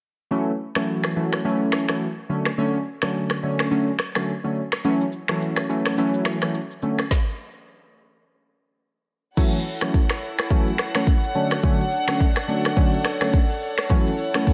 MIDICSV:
0, 0, Header, 1, 4, 480
1, 0, Start_track
1, 0, Key_signature, 3, "major"
1, 0, Tempo, 566038
1, 268, Time_signature, 4, 2, 24, 8
1, 12324, End_track
2, 0, Start_track
2, 0, Title_t, "String section"
2, 0, Program_c, 0, 48
2, 7947, Note_on_c, 0, 64, 75
2, 7948, Note_on_c, 0, 73, 71
2, 7950, Note_on_c, 0, 69, 73
2, 7950, Note_on_c, 0, 78, 88
2, 9611, Note_off_c, 0, 64, 0
2, 9629, Note_on_c, 0, 62, 77
2, 11755, Note_off_c, 0, 78, 0
2, 11767, Note_off_c, 0, 62, 0
2, 11791, Note_on_c, 0, 64, 78
2, 11792, Note_on_c, 0, 78, 84
2, 12324, Note_off_c, 0, 64, 0
2, 12324, Note_off_c, 0, 69, 0
2, 12324, Note_off_c, 0, 73, 0
2, 12324, Note_off_c, 0, 78, 0
2, 12324, End_track
3, 0, Start_track
3, 0, Title_t, "Synth keys"
3, 0, Program_c, 1, 88
3, 261, Note_on_c, 1, 52, 87
3, 262, Note_on_c, 1, 54, 81
3, 264, Note_on_c, 1, 57, 80
3, 266, Note_on_c, 1, 61, 98
3, 435, Note_off_c, 1, 52, 0
3, 436, Note_off_c, 1, 54, 0
3, 437, Note_off_c, 1, 57, 0
3, 437, Note_off_c, 1, 61, 0
3, 642, Note_on_c, 1, 52, 72
3, 644, Note_on_c, 1, 54, 65
3, 645, Note_on_c, 1, 57, 67
3, 647, Note_on_c, 1, 61, 78
3, 961, Note_off_c, 1, 52, 0
3, 962, Note_off_c, 1, 54, 0
3, 963, Note_off_c, 1, 57, 0
3, 964, Note_off_c, 1, 61, 0
3, 985, Note_on_c, 1, 52, 76
3, 987, Note_on_c, 1, 54, 70
3, 989, Note_on_c, 1, 57, 69
3, 990, Note_on_c, 1, 61, 81
3, 1210, Note_off_c, 1, 52, 0
3, 1211, Note_off_c, 1, 54, 0
3, 1212, Note_off_c, 1, 57, 0
3, 1213, Note_off_c, 1, 61, 0
3, 1226, Note_on_c, 1, 52, 84
3, 1227, Note_on_c, 1, 54, 85
3, 1229, Note_on_c, 1, 57, 81
3, 1231, Note_on_c, 1, 61, 97
3, 1573, Note_off_c, 1, 52, 0
3, 1574, Note_off_c, 1, 54, 0
3, 1574, Note_off_c, 1, 57, 0
3, 1575, Note_off_c, 1, 61, 0
3, 1603, Note_on_c, 1, 52, 71
3, 1604, Note_on_c, 1, 54, 62
3, 1606, Note_on_c, 1, 57, 63
3, 1608, Note_on_c, 1, 61, 75
3, 1749, Note_off_c, 1, 52, 0
3, 1750, Note_off_c, 1, 54, 0
3, 1751, Note_off_c, 1, 57, 0
3, 1752, Note_off_c, 1, 61, 0
3, 1945, Note_on_c, 1, 50, 73
3, 1946, Note_on_c, 1, 54, 64
3, 1948, Note_on_c, 1, 57, 64
3, 1950, Note_on_c, 1, 61, 79
3, 2117, Note_off_c, 1, 50, 0
3, 2117, Note_off_c, 1, 54, 0
3, 2118, Note_off_c, 1, 57, 0
3, 2119, Note_off_c, 1, 61, 0
3, 2186, Note_on_c, 1, 50, 88
3, 2187, Note_on_c, 1, 54, 79
3, 2188, Note_on_c, 1, 57, 79
3, 2191, Note_on_c, 1, 61, 101
3, 2357, Note_off_c, 1, 50, 0
3, 2358, Note_off_c, 1, 54, 0
3, 2359, Note_off_c, 1, 57, 0
3, 2360, Note_off_c, 1, 61, 0
3, 2565, Note_on_c, 1, 50, 72
3, 2566, Note_on_c, 1, 54, 62
3, 2569, Note_on_c, 1, 57, 63
3, 2569, Note_on_c, 1, 61, 77
3, 2883, Note_off_c, 1, 50, 0
3, 2883, Note_off_c, 1, 54, 0
3, 2885, Note_off_c, 1, 57, 0
3, 2885, Note_off_c, 1, 61, 0
3, 2908, Note_on_c, 1, 50, 77
3, 2909, Note_on_c, 1, 54, 69
3, 2911, Note_on_c, 1, 57, 72
3, 2912, Note_on_c, 1, 61, 83
3, 3132, Note_off_c, 1, 50, 0
3, 3132, Note_off_c, 1, 54, 0
3, 3133, Note_off_c, 1, 57, 0
3, 3134, Note_off_c, 1, 61, 0
3, 3145, Note_on_c, 1, 50, 86
3, 3146, Note_on_c, 1, 54, 78
3, 3148, Note_on_c, 1, 57, 82
3, 3149, Note_on_c, 1, 61, 95
3, 3317, Note_off_c, 1, 50, 0
3, 3318, Note_off_c, 1, 54, 0
3, 3319, Note_off_c, 1, 57, 0
3, 3319, Note_off_c, 1, 61, 0
3, 3523, Note_on_c, 1, 50, 71
3, 3525, Note_on_c, 1, 54, 63
3, 3525, Note_on_c, 1, 57, 64
3, 3528, Note_on_c, 1, 61, 79
3, 3669, Note_off_c, 1, 50, 0
3, 3670, Note_off_c, 1, 54, 0
3, 3670, Note_off_c, 1, 57, 0
3, 3672, Note_off_c, 1, 61, 0
3, 3765, Note_on_c, 1, 50, 70
3, 3766, Note_on_c, 1, 54, 63
3, 3768, Note_on_c, 1, 57, 67
3, 3769, Note_on_c, 1, 61, 78
3, 3910, Note_off_c, 1, 50, 0
3, 3911, Note_off_c, 1, 54, 0
3, 3911, Note_off_c, 1, 57, 0
3, 3912, Note_off_c, 1, 61, 0
3, 4107, Note_on_c, 1, 52, 88
3, 4110, Note_on_c, 1, 54, 85
3, 4112, Note_on_c, 1, 57, 84
3, 4112, Note_on_c, 1, 61, 102
3, 4278, Note_off_c, 1, 52, 0
3, 4279, Note_off_c, 1, 54, 0
3, 4280, Note_off_c, 1, 57, 0
3, 4281, Note_off_c, 1, 61, 0
3, 4485, Note_on_c, 1, 52, 73
3, 4487, Note_on_c, 1, 54, 67
3, 4488, Note_on_c, 1, 57, 68
3, 4491, Note_on_c, 1, 61, 83
3, 4803, Note_off_c, 1, 52, 0
3, 4804, Note_off_c, 1, 54, 0
3, 4804, Note_off_c, 1, 57, 0
3, 4806, Note_off_c, 1, 61, 0
3, 4828, Note_on_c, 1, 52, 73
3, 4828, Note_on_c, 1, 54, 68
3, 4830, Note_on_c, 1, 57, 69
3, 4831, Note_on_c, 1, 61, 84
3, 5052, Note_off_c, 1, 52, 0
3, 5052, Note_off_c, 1, 54, 0
3, 5053, Note_off_c, 1, 57, 0
3, 5054, Note_off_c, 1, 61, 0
3, 5068, Note_on_c, 1, 52, 91
3, 5070, Note_on_c, 1, 54, 86
3, 5072, Note_on_c, 1, 57, 82
3, 5073, Note_on_c, 1, 61, 103
3, 5414, Note_off_c, 1, 52, 0
3, 5415, Note_off_c, 1, 54, 0
3, 5416, Note_off_c, 1, 57, 0
3, 5416, Note_off_c, 1, 61, 0
3, 5446, Note_on_c, 1, 52, 71
3, 5448, Note_on_c, 1, 54, 64
3, 5448, Note_on_c, 1, 57, 65
3, 5452, Note_on_c, 1, 61, 74
3, 5591, Note_off_c, 1, 52, 0
3, 5591, Note_off_c, 1, 57, 0
3, 5592, Note_off_c, 1, 54, 0
3, 5593, Note_off_c, 1, 61, 0
3, 5787, Note_on_c, 1, 50, 69
3, 5788, Note_on_c, 1, 54, 63
3, 5789, Note_on_c, 1, 57, 65
3, 5791, Note_on_c, 1, 61, 78
3, 5958, Note_off_c, 1, 50, 0
3, 5959, Note_off_c, 1, 54, 0
3, 5959, Note_off_c, 1, 57, 0
3, 5960, Note_off_c, 1, 61, 0
3, 7947, Note_on_c, 1, 52, 90
3, 7948, Note_on_c, 1, 54, 84
3, 7951, Note_on_c, 1, 57, 82
3, 7952, Note_on_c, 1, 61, 101
3, 8118, Note_off_c, 1, 52, 0
3, 8118, Note_off_c, 1, 54, 0
3, 8120, Note_off_c, 1, 57, 0
3, 8120, Note_off_c, 1, 61, 0
3, 8324, Note_on_c, 1, 52, 74
3, 8326, Note_on_c, 1, 54, 68
3, 8329, Note_on_c, 1, 57, 67
3, 8329, Note_on_c, 1, 61, 77
3, 8470, Note_off_c, 1, 52, 0
3, 8470, Note_off_c, 1, 54, 0
3, 8472, Note_off_c, 1, 57, 0
3, 8472, Note_off_c, 1, 61, 0
3, 8906, Note_on_c, 1, 52, 88
3, 8909, Note_on_c, 1, 54, 83
3, 8910, Note_on_c, 1, 57, 85
3, 8912, Note_on_c, 1, 61, 102
3, 9078, Note_off_c, 1, 52, 0
3, 9079, Note_off_c, 1, 54, 0
3, 9080, Note_off_c, 1, 57, 0
3, 9080, Note_off_c, 1, 61, 0
3, 9285, Note_on_c, 1, 52, 68
3, 9287, Note_on_c, 1, 54, 62
3, 9289, Note_on_c, 1, 57, 66
3, 9291, Note_on_c, 1, 61, 76
3, 9430, Note_off_c, 1, 52, 0
3, 9431, Note_off_c, 1, 54, 0
3, 9432, Note_off_c, 1, 57, 0
3, 9433, Note_off_c, 1, 61, 0
3, 9623, Note_on_c, 1, 50, 71
3, 9626, Note_on_c, 1, 54, 69
3, 9627, Note_on_c, 1, 57, 66
3, 9628, Note_on_c, 1, 61, 78
3, 9796, Note_off_c, 1, 50, 0
3, 9798, Note_off_c, 1, 54, 0
3, 9798, Note_off_c, 1, 57, 0
3, 9799, Note_off_c, 1, 61, 0
3, 9863, Note_on_c, 1, 50, 95
3, 9865, Note_on_c, 1, 54, 85
3, 9866, Note_on_c, 1, 57, 84
3, 9869, Note_on_c, 1, 61, 100
3, 10036, Note_off_c, 1, 50, 0
3, 10037, Note_off_c, 1, 54, 0
3, 10037, Note_off_c, 1, 57, 0
3, 10039, Note_off_c, 1, 61, 0
3, 10241, Note_on_c, 1, 50, 73
3, 10243, Note_on_c, 1, 54, 66
3, 10246, Note_on_c, 1, 61, 80
3, 10247, Note_on_c, 1, 57, 67
3, 10388, Note_off_c, 1, 50, 0
3, 10389, Note_off_c, 1, 54, 0
3, 10391, Note_off_c, 1, 57, 0
3, 10391, Note_off_c, 1, 61, 0
3, 10581, Note_on_c, 1, 50, 77
3, 10584, Note_on_c, 1, 54, 73
3, 10586, Note_on_c, 1, 57, 70
3, 10588, Note_on_c, 1, 61, 84
3, 10755, Note_off_c, 1, 50, 0
3, 10757, Note_off_c, 1, 54, 0
3, 10758, Note_off_c, 1, 57, 0
3, 10758, Note_off_c, 1, 61, 0
3, 10823, Note_on_c, 1, 50, 93
3, 10824, Note_on_c, 1, 54, 87
3, 10826, Note_on_c, 1, 57, 85
3, 10827, Note_on_c, 1, 61, 99
3, 10996, Note_off_c, 1, 50, 0
3, 10997, Note_off_c, 1, 54, 0
3, 10997, Note_off_c, 1, 57, 0
3, 10998, Note_off_c, 1, 61, 0
3, 11200, Note_on_c, 1, 50, 70
3, 11202, Note_on_c, 1, 54, 66
3, 11204, Note_on_c, 1, 57, 64
3, 11206, Note_on_c, 1, 61, 78
3, 11348, Note_off_c, 1, 50, 0
3, 11349, Note_off_c, 1, 54, 0
3, 11349, Note_off_c, 1, 57, 0
3, 11351, Note_off_c, 1, 61, 0
3, 11783, Note_on_c, 1, 52, 93
3, 11785, Note_on_c, 1, 54, 85
3, 11787, Note_on_c, 1, 57, 87
3, 11788, Note_on_c, 1, 61, 105
3, 11956, Note_off_c, 1, 52, 0
3, 11957, Note_off_c, 1, 54, 0
3, 11958, Note_off_c, 1, 57, 0
3, 11958, Note_off_c, 1, 61, 0
3, 12163, Note_on_c, 1, 52, 72
3, 12167, Note_on_c, 1, 54, 65
3, 12167, Note_on_c, 1, 57, 67
3, 12168, Note_on_c, 1, 61, 79
3, 12309, Note_off_c, 1, 52, 0
3, 12311, Note_off_c, 1, 54, 0
3, 12311, Note_off_c, 1, 57, 0
3, 12312, Note_off_c, 1, 61, 0
3, 12324, End_track
4, 0, Start_track
4, 0, Title_t, "Drums"
4, 639, Note_on_c, 9, 26, 77
4, 646, Note_on_c, 9, 37, 95
4, 724, Note_off_c, 9, 26, 0
4, 731, Note_off_c, 9, 37, 0
4, 878, Note_on_c, 9, 26, 64
4, 886, Note_on_c, 9, 37, 83
4, 963, Note_off_c, 9, 26, 0
4, 970, Note_off_c, 9, 37, 0
4, 1124, Note_on_c, 9, 26, 74
4, 1131, Note_on_c, 9, 37, 89
4, 1209, Note_off_c, 9, 26, 0
4, 1216, Note_off_c, 9, 37, 0
4, 1459, Note_on_c, 9, 26, 72
4, 1467, Note_on_c, 9, 37, 91
4, 1544, Note_off_c, 9, 26, 0
4, 1551, Note_off_c, 9, 37, 0
4, 1599, Note_on_c, 9, 26, 68
4, 1606, Note_on_c, 9, 37, 92
4, 1684, Note_off_c, 9, 26, 0
4, 1691, Note_off_c, 9, 37, 0
4, 2081, Note_on_c, 9, 26, 68
4, 2089, Note_on_c, 9, 37, 87
4, 2166, Note_off_c, 9, 26, 0
4, 2173, Note_off_c, 9, 37, 0
4, 2559, Note_on_c, 9, 26, 74
4, 2566, Note_on_c, 9, 37, 91
4, 2644, Note_off_c, 9, 26, 0
4, 2651, Note_off_c, 9, 37, 0
4, 2797, Note_on_c, 9, 26, 64
4, 2804, Note_on_c, 9, 37, 81
4, 2882, Note_off_c, 9, 26, 0
4, 2889, Note_off_c, 9, 37, 0
4, 3046, Note_on_c, 9, 26, 76
4, 3053, Note_on_c, 9, 37, 96
4, 3131, Note_off_c, 9, 26, 0
4, 3138, Note_off_c, 9, 37, 0
4, 3381, Note_on_c, 9, 26, 75
4, 3388, Note_on_c, 9, 37, 91
4, 3466, Note_off_c, 9, 26, 0
4, 3473, Note_off_c, 9, 37, 0
4, 3522, Note_on_c, 9, 26, 74
4, 3529, Note_on_c, 9, 37, 90
4, 3607, Note_off_c, 9, 26, 0
4, 3614, Note_off_c, 9, 37, 0
4, 4003, Note_on_c, 9, 26, 67
4, 4010, Note_on_c, 9, 37, 86
4, 4087, Note_off_c, 9, 26, 0
4, 4094, Note_off_c, 9, 37, 0
4, 4108, Note_on_c, 9, 82, 84
4, 4193, Note_off_c, 9, 82, 0
4, 4248, Note_on_c, 9, 82, 45
4, 4333, Note_off_c, 9, 82, 0
4, 4343, Note_on_c, 9, 82, 54
4, 4428, Note_off_c, 9, 82, 0
4, 4480, Note_on_c, 9, 26, 77
4, 4485, Note_on_c, 9, 82, 51
4, 4487, Note_on_c, 9, 37, 97
4, 4565, Note_off_c, 9, 26, 0
4, 4570, Note_off_c, 9, 82, 0
4, 4572, Note_off_c, 9, 37, 0
4, 4592, Note_on_c, 9, 82, 74
4, 4677, Note_off_c, 9, 82, 0
4, 4719, Note_on_c, 9, 26, 66
4, 4726, Note_on_c, 9, 37, 84
4, 4730, Note_on_c, 9, 82, 45
4, 4803, Note_off_c, 9, 26, 0
4, 4811, Note_off_c, 9, 37, 0
4, 4815, Note_off_c, 9, 82, 0
4, 4834, Note_on_c, 9, 82, 45
4, 4919, Note_off_c, 9, 82, 0
4, 4965, Note_on_c, 9, 26, 75
4, 4969, Note_on_c, 9, 82, 48
4, 4973, Note_on_c, 9, 37, 93
4, 5050, Note_off_c, 9, 26, 0
4, 5054, Note_off_c, 9, 82, 0
4, 5057, Note_off_c, 9, 37, 0
4, 5065, Note_on_c, 9, 82, 69
4, 5150, Note_off_c, 9, 82, 0
4, 5205, Note_on_c, 9, 82, 53
4, 5290, Note_off_c, 9, 82, 0
4, 5301, Note_on_c, 9, 26, 74
4, 5308, Note_on_c, 9, 37, 94
4, 5311, Note_on_c, 9, 82, 49
4, 5386, Note_off_c, 9, 26, 0
4, 5393, Note_off_c, 9, 37, 0
4, 5396, Note_off_c, 9, 82, 0
4, 5442, Note_on_c, 9, 26, 70
4, 5448, Note_on_c, 9, 82, 56
4, 5449, Note_on_c, 9, 37, 92
4, 5527, Note_off_c, 9, 26, 0
4, 5533, Note_off_c, 9, 82, 0
4, 5534, Note_off_c, 9, 37, 0
4, 5549, Note_on_c, 9, 82, 83
4, 5634, Note_off_c, 9, 82, 0
4, 5690, Note_on_c, 9, 82, 40
4, 5775, Note_off_c, 9, 82, 0
4, 5784, Note_on_c, 9, 82, 48
4, 5869, Note_off_c, 9, 82, 0
4, 5924, Note_on_c, 9, 26, 67
4, 5931, Note_on_c, 9, 37, 85
4, 5933, Note_on_c, 9, 82, 46
4, 6009, Note_off_c, 9, 26, 0
4, 6016, Note_off_c, 9, 37, 0
4, 6018, Note_off_c, 9, 82, 0
4, 6028, Note_on_c, 9, 36, 101
4, 6029, Note_on_c, 9, 38, 85
4, 6113, Note_off_c, 9, 36, 0
4, 6114, Note_off_c, 9, 38, 0
4, 7948, Note_on_c, 9, 36, 106
4, 7948, Note_on_c, 9, 49, 87
4, 7948, Note_on_c, 9, 82, 81
4, 8033, Note_off_c, 9, 36, 0
4, 8033, Note_off_c, 9, 49, 0
4, 8033, Note_off_c, 9, 82, 0
4, 8091, Note_on_c, 9, 82, 45
4, 8176, Note_off_c, 9, 82, 0
4, 8185, Note_on_c, 9, 82, 55
4, 8270, Note_off_c, 9, 82, 0
4, 8322, Note_on_c, 9, 26, 79
4, 8326, Note_on_c, 9, 82, 55
4, 8329, Note_on_c, 9, 37, 98
4, 8406, Note_off_c, 9, 26, 0
4, 8411, Note_off_c, 9, 82, 0
4, 8414, Note_off_c, 9, 37, 0
4, 8430, Note_on_c, 9, 36, 91
4, 8433, Note_on_c, 9, 82, 75
4, 8515, Note_off_c, 9, 36, 0
4, 8518, Note_off_c, 9, 82, 0
4, 8561, Note_on_c, 9, 26, 70
4, 8568, Note_on_c, 9, 37, 84
4, 8572, Note_on_c, 9, 82, 45
4, 8646, Note_off_c, 9, 26, 0
4, 8653, Note_off_c, 9, 37, 0
4, 8657, Note_off_c, 9, 82, 0
4, 8676, Note_on_c, 9, 82, 47
4, 8760, Note_off_c, 9, 82, 0
4, 8807, Note_on_c, 9, 26, 73
4, 8811, Note_on_c, 9, 82, 51
4, 8814, Note_on_c, 9, 37, 94
4, 8892, Note_off_c, 9, 26, 0
4, 8896, Note_off_c, 9, 82, 0
4, 8899, Note_off_c, 9, 37, 0
4, 8908, Note_on_c, 9, 36, 112
4, 8910, Note_on_c, 9, 82, 71
4, 8993, Note_off_c, 9, 36, 0
4, 8995, Note_off_c, 9, 82, 0
4, 9049, Note_on_c, 9, 82, 53
4, 9134, Note_off_c, 9, 82, 0
4, 9144, Note_on_c, 9, 26, 73
4, 9152, Note_on_c, 9, 37, 95
4, 9155, Note_on_c, 9, 82, 49
4, 9229, Note_off_c, 9, 26, 0
4, 9236, Note_off_c, 9, 37, 0
4, 9240, Note_off_c, 9, 82, 0
4, 9283, Note_on_c, 9, 26, 75
4, 9289, Note_on_c, 9, 82, 57
4, 9290, Note_on_c, 9, 37, 95
4, 9367, Note_off_c, 9, 26, 0
4, 9374, Note_off_c, 9, 82, 0
4, 9375, Note_off_c, 9, 37, 0
4, 9388, Note_on_c, 9, 36, 95
4, 9389, Note_on_c, 9, 82, 85
4, 9472, Note_off_c, 9, 36, 0
4, 9474, Note_off_c, 9, 82, 0
4, 9529, Note_on_c, 9, 82, 41
4, 9614, Note_off_c, 9, 82, 0
4, 9624, Note_on_c, 9, 82, 48
4, 9709, Note_off_c, 9, 82, 0
4, 9762, Note_on_c, 9, 26, 68
4, 9769, Note_on_c, 9, 37, 88
4, 9771, Note_on_c, 9, 82, 47
4, 9847, Note_off_c, 9, 26, 0
4, 9854, Note_off_c, 9, 37, 0
4, 9856, Note_off_c, 9, 82, 0
4, 9867, Note_on_c, 9, 36, 108
4, 9867, Note_on_c, 9, 82, 78
4, 9952, Note_off_c, 9, 36, 0
4, 9952, Note_off_c, 9, 82, 0
4, 10010, Note_on_c, 9, 82, 45
4, 10095, Note_off_c, 9, 82, 0
4, 10104, Note_on_c, 9, 82, 56
4, 10189, Note_off_c, 9, 82, 0
4, 10241, Note_on_c, 9, 26, 79
4, 10246, Note_on_c, 9, 82, 54
4, 10248, Note_on_c, 9, 37, 97
4, 10326, Note_off_c, 9, 26, 0
4, 10331, Note_off_c, 9, 82, 0
4, 10333, Note_off_c, 9, 37, 0
4, 10350, Note_on_c, 9, 36, 91
4, 10353, Note_on_c, 9, 82, 78
4, 10435, Note_off_c, 9, 36, 0
4, 10438, Note_off_c, 9, 82, 0
4, 10481, Note_on_c, 9, 26, 67
4, 10488, Note_on_c, 9, 37, 86
4, 10492, Note_on_c, 9, 82, 46
4, 10566, Note_off_c, 9, 26, 0
4, 10573, Note_off_c, 9, 37, 0
4, 10577, Note_off_c, 9, 82, 0
4, 10596, Note_on_c, 9, 82, 46
4, 10681, Note_off_c, 9, 82, 0
4, 10728, Note_on_c, 9, 26, 75
4, 10732, Note_on_c, 9, 82, 50
4, 10736, Note_on_c, 9, 37, 93
4, 10813, Note_off_c, 9, 26, 0
4, 10817, Note_off_c, 9, 82, 0
4, 10820, Note_off_c, 9, 37, 0
4, 10828, Note_on_c, 9, 36, 114
4, 10830, Note_on_c, 9, 82, 71
4, 10912, Note_off_c, 9, 36, 0
4, 10915, Note_off_c, 9, 82, 0
4, 10969, Note_on_c, 9, 82, 57
4, 11054, Note_off_c, 9, 82, 0
4, 11063, Note_on_c, 9, 26, 78
4, 11070, Note_on_c, 9, 37, 92
4, 11073, Note_on_c, 9, 82, 49
4, 11147, Note_off_c, 9, 26, 0
4, 11155, Note_off_c, 9, 37, 0
4, 11158, Note_off_c, 9, 82, 0
4, 11202, Note_on_c, 9, 26, 70
4, 11208, Note_on_c, 9, 82, 58
4, 11209, Note_on_c, 9, 37, 95
4, 11287, Note_off_c, 9, 26, 0
4, 11293, Note_off_c, 9, 82, 0
4, 11294, Note_off_c, 9, 37, 0
4, 11309, Note_on_c, 9, 36, 96
4, 11310, Note_on_c, 9, 82, 88
4, 11393, Note_off_c, 9, 36, 0
4, 11395, Note_off_c, 9, 82, 0
4, 11451, Note_on_c, 9, 82, 40
4, 11536, Note_off_c, 9, 82, 0
4, 11545, Note_on_c, 9, 82, 49
4, 11630, Note_off_c, 9, 82, 0
4, 11683, Note_on_c, 9, 26, 70
4, 11690, Note_on_c, 9, 37, 87
4, 11692, Note_on_c, 9, 82, 47
4, 11767, Note_off_c, 9, 26, 0
4, 11774, Note_off_c, 9, 37, 0
4, 11777, Note_off_c, 9, 82, 0
4, 11789, Note_on_c, 9, 36, 104
4, 11789, Note_on_c, 9, 82, 84
4, 11873, Note_off_c, 9, 36, 0
4, 11874, Note_off_c, 9, 82, 0
4, 11932, Note_on_c, 9, 82, 46
4, 12016, Note_off_c, 9, 82, 0
4, 12025, Note_on_c, 9, 82, 57
4, 12110, Note_off_c, 9, 82, 0
4, 12163, Note_on_c, 9, 26, 76
4, 12168, Note_on_c, 9, 82, 54
4, 12170, Note_on_c, 9, 37, 97
4, 12248, Note_off_c, 9, 26, 0
4, 12253, Note_off_c, 9, 82, 0
4, 12255, Note_off_c, 9, 37, 0
4, 12271, Note_on_c, 9, 36, 86
4, 12274, Note_on_c, 9, 82, 73
4, 12324, Note_off_c, 9, 36, 0
4, 12324, Note_off_c, 9, 82, 0
4, 12324, End_track
0, 0, End_of_file